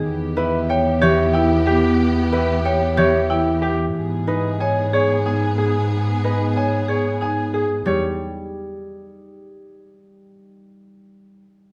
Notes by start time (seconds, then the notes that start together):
0.03 E2 B3 G4
0.37 E4 B4
0.70 C#5 G5
1.01 E3 G4 C#5
1.33 E4 G5
1.67 G4
2.32 E4 B4
2.65 C#5 G5
2.97 E3 G4 C#5
3.30 E4 G5
3.62 G4
3.95 G#2 B3 G#4
4.27 D#4 B4
4.60 C#5 G#5
4.93 G#4 C#5
5.26 D#4 G#5
5.58 G#4
6.24 D#4 B4
6.56 C#5 G#5
6.88 G#4 C#5
7.21 D#4 G#5
7.54 G#4
7.85 E2 G3 G4 C#5